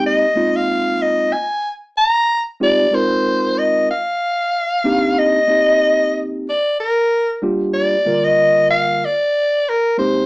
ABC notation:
X:1
M:4/4
L:1/16
Q:"Swing 16ths" 1/4=93
K:Gphr
V:1 name="Soprano saxophone"
e3 f3 e2 a2 z2 b3 z | d2 c4 e2 f8 | e6 z2 d2 B4 z2 | d3 e3 f2 d4 B2 c2 |]
V:2 name="Tine electric piano"
[A,B,CEG]2 [A,B,CEF]6 z8 | [A,CEFG]2 [A,CEFB]6 z6 [B,CDEG]2- | [B,CDEG]2 [B,CEG]6 z6 [G,B,DFG]2- | [G,B,DFG]2 [D,G,B,FB]6 z6 [A,B,CEG]2 |]